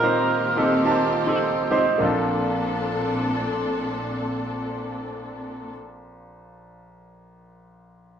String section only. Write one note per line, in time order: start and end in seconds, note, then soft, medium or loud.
0.00 1.97 D#3 medium
0.00 1.97 A#3 medium
0.00 1.97 C4 medium
0.00 1.97 F4 medium
0.00 1.97 G4 medium
1.99 5.69 A#2 medium
1.99 5.70 A#3 soft
1.99 5.69 C4 medium
1.99 5.69 D4 medium
1.99 5.70 A4 medium